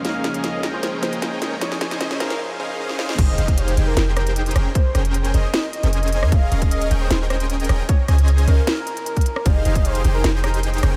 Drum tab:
CC |--------------------------------|--------------------------------|x-------------------------------|--------------------------------|
RD |--------------------------------|--------------------------------|--------------------------------|--------------------------------|
HH |x---x-x-x---x---x---x-x-x---x---|x---x-x-x---x-------------------|x---x-x-x-x-x---x---x-x-x-xxx---|x---x-x-x-x-x---x---x-x-x-xxx---|
SD |o---o---o---o---o---o---o---o---|o-o-o-o-o-o-o-o-----------o-o-o-|----------------o---r-------r---|----r-----------o-------------r-|
BD |--------------------------------|--------------------------------|o-----o-------------------------|o-------------------------------|

CC |--------------------------------|--------------------------------|--------------------------------|
RD |--------------------------------|--------------------------------|x---------------x---------------|
HH |x---x-x-x-x-x---x---x-x-x-xxx---|x---x-x-x-x-x---x---x-x-x-xxx---|x---x-x-x-x-x---x---x-x-x-xxx---|
SD |----------------o---r-------r---|----r-----------o-------------r-|----------------o---r-------r---|
BD |o-----o-------------------------|o-------------------------o-----|o-----o-------------------------|